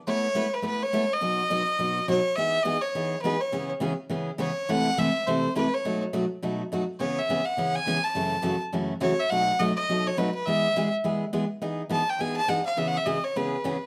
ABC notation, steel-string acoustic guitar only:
X:1
M:4/4
L:1/8
Q:"Swing" 1/4=208
K:E
V:1 name="Steel-string acoustic guitar"
[A,B,EB] z [A,B,EB] z [A,B,EB] z [A,B,EB] z | [B,,F,B,DF] z [B,,F,B,DF] z [B,,F,B,DF] z [B,,F,B,DF] z | [E,B,DG] z [E,B,DG] z [E,B,DG] z [E,B,DG] z | [C,E,B,CG] z [C,E,B,CG] z [C,E,B,CG] z [C,E,B,CG] z |
[=C,E,A,EAB] z [C,E,A,EAB] z [C,E,A,EAB] z [C,E,A,EAB] z | [B,,F,A,DF] z [B,,F,A,DF] z [B,,F,A,DF] z [B,,F,A,DF] z | [C,E,B,CG] z [C,E,B,CG] z [C,E,B,CG] z [C,E,B,CG] z | [F,,C,E,A,CF] z [F,,C,E,A,CF] z [F,,C,E,A,CF] z [F,,C,E,A,CF] z |
[B,,F,A,DF] z [B,,F,A,DF] z [B,,F,A,DF] z [B,,F,A,DF] z | [E,G,B,EG] z [E,G,B,EG] z [E,G,B,EG] z [E,G,B,EG] z | [E,B,DG] z [E,B,DG] z [E,B,DG] z [E,B,DG] z | [C,E,B,CG] z [C,E,B,CG] z [C,E,B,CG] z [C,E,B,CG] z |]